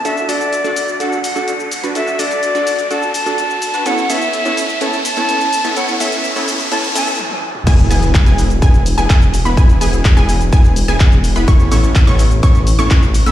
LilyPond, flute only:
\new Staff \with { instrumentName = "Flute" } { \time 4/4 \key a \major \tempo 4 = 126 e''8 d''4. fis''8 fis''4 r8 | e''8 d''4. a''8 a''4. | fis''8 e''4. a''8 a''4. | fis''8 e''4 r8 a''8 a''8 r4 |
r1 | r1 | r1 | }